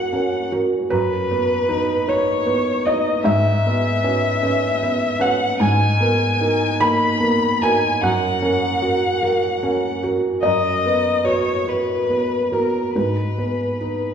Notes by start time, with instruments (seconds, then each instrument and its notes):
Already playing: felt piano F#2 C#4 F#4 A#4 F#5, violin F#5
0.13 felt piano C#4 A#4
0.52 felt piano F#4 A#4
0.90 felt piano F#2 B4, violin B4
1.31 felt piano B3 B4
1.69 felt piano D#4 B4
2.08 felt piano D#4 B4 C#5, violin C#5
2.46 felt piano B3 B4
2.85 felt piano D#4 B4 D#5, violin D#5
3.24 felt piano G#2 E5, violin E5
3.66 felt piano B3 B4
4.04 felt piano C#4 B4
4.43 felt piano C#4 B4
4.83 felt piano B3 B4
5.20 felt piano C#4 B4 F#5, violin F#5
5.60 felt piano G#2 G#5, violin G#5
6.00 felt piano B3 A#4
6.41 felt piano D#4 A#4
6.80 felt piano A#3 D#4 B5, violin B5
7.20 felt piano A#3 B3
7.62 felt piano D#4 A#4 G#5, violin G#5
8.02 felt piano F#2 F#5, violin F#5
8.42 felt piano C#4 A#4
8.82 felt piano F#4 A#4
9.22 felt piano F#4 A#4
9.63 felt piano C#4 A#4
10.03 felt piano F#4 A#4
10.42 felt piano F#2 D#5, violin D#5
10.86 felt piano B3 B4
11.24 felt piano F#4 B4 C#5, violin C#5
11.67 felt piano F#4 B4, violin B4
12.09 felt piano B3 B4
12.52 felt piano B3 F#4 A#4, violin A#4
12.95 felt piano G#2 B4, violin B4
13.38 felt piano B3 B4
13.81 felt piano D#4 B4